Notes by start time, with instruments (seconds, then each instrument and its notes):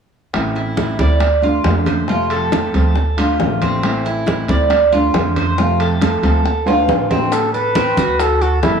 0.34 upright bass A1, nylon-string guitar E3 A3 C4 E4, high bongo, high conga, high timbale
0.56 cuban tres E4, high bongo, high conga
0.77 nylon-string guitar E3 A3 C4 E4, high bongo, high conga, high timbale
0.99 upright bass D2, nylon-string guitar A3 C4 E4, cuban tres D5, high bongo, high conga, high timbale
1.20 muted nylon-string guitar stroke, high bongo, high conga, high timbale
1.42 nylon-string guitar A3 D4 F4, cuban tres F4, high bongo, high conga
1.64 upright bass F2, nylon-string guitar D3 A3 D4 F4, high bongo, low bongo, high conga, high timbale, low timbale
1.86 cuban tres C5, high conga, high timbale
2.07 nylon-string guitar C3 F3 A3 C4 F4, cuban tres F4, high bongo, high conga
2.30 cuban tres A4, high conga, high timbale
2.52 nylon-string guitar F3 A3 C4 F4, high bongo, high conga, high timbale
2.74 upright bass D2, nylon-string guitar F3 A3 C4 F4, cuban tres A4, high bongo, high conga, high timbale
2.95 muted nylon-string guitar stroke, high bongo, high conga
3.17 nylon-string guitar A3 D4 F4, cuban tres F4, high bongo, high conga, high timbale
3.39 upright bass A1, nylon-string guitar D3 A3 D4 F4, high bongo, low bongo, high conga, low timbale
3.62 cuban tres C4, high bongo, high conga, high timbale
3.83 nylon-string guitar E3 A3 C4 E4, high bongo, high conga, high timbale
4.05 cuban tres E4, high bongo, high conga
4.27 nylon-string guitar E3 A3 C4 E4, high bongo, high conga, high timbale
4.48 upright bass D2, nylon-string guitar A3 C4 E4, cuban tres D5, high bongo, high conga, high timbale
4.70 muted nylon-string guitar stroke, high bongo, high conga, high timbale
4.92 nylon-string guitar A3 D4 F4, cuban tres F4, high bongo, high conga
5.14 upright bass F2, nylon-string guitar D3 A3 D4 F4, high bongo, low bongo, high conga, high timbale
5.36 cuban tres C5, high conga, high timbale
5.58 nylon-string guitar C3 F3 A3 C4 F4, cuban tres F4, high bongo, high conga
5.80 cuban tres A4, high conga, high timbale
6.01 nylon-string guitar F3 A3 C4 F4, high bongo, high conga, high timbale
6.23 upright bass D2, nylon-string guitar F3 A3 C4 F4, cuban tres A4, high bongo, high conga, high timbale
6.44 muted nylon-string guitar stroke, high bongo, high conga
6.66 nylon-string guitar A3 D4 F4, cuban tres F4, high bongo, high conga, high timbale
6.88 upright bass A1, nylon-string guitar D3 A3 D4 F4, high bongo, low bongo, high conga, high timbale
7.11 cuban tres C4, high bongo, high conga, low timbale
7.32 muted trumpet A4, high bongo, high conga, high timbale, maracas
7.53 cuban tres A4, muted trumpet B4, high bongo, high conga, maracas
7.75 cuban tres C4, high bongo, high conga, high timbale, maracas
7.97 upright bass D2, cuban tres F#4, high bongo, high conga, high timbale, maracas
8.19 muted trumpet A4, high bongo, high conga, high timbale, maracas
8.41 muted trumpet F#4, cuban tres A4, high bongo, high conga, maracas
8.62 upright bass G1, muted trumpet E4, high bongo, low bongo, high conga, high timbale, maracas